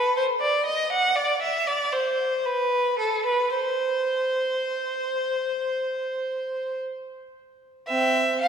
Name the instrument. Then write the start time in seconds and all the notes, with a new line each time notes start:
violin
Already playing: B4
0.17 C5
0.40 D5
0.66 D#5
0.92 F#5
1.15 D5
1.42 E5
1.67 D5
1.92 C5
2.46 B4
2.98 A4
3.26 B4
3.55 C5
7.88 C4 E5
8.41 F5